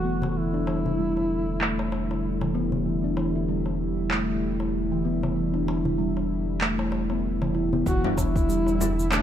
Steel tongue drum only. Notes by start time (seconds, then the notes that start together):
0.05 B3
0.36 E3
0.54 D4
0.67 E3
0.85 E4
0.98 G3
1.61 A3
2.41 E3
2.54 B3
2.86 E3
3.04 D4
3.17 E3
3.36 E4
3.48 G3
4.11 A3
4.92 E3
5.05 B3
5.36 E3
5.54 D4
5.67 E3
5.85 E4
5.98 G3
6.61 A3
7.11 B3
7.42 E3
7.55 E4
7.73 B3
7.87 E3
8.04 D4
8.17 E3
8.35 E4
8.49 G3
9.11 A3